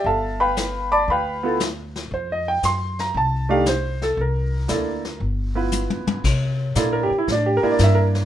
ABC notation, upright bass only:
X:1
M:4/4
L:1/8
Q:"Swing" 1/4=116
K:Gdor
V:1 name="Upright bass" clef=bass
G,,,4 D,,4 | F,,2 ^F,,2 C,,4 | C,,2 D,,2 G,,,2- (3G,,, D,, G,, | C,2 B,, z A,, z G,,2 |]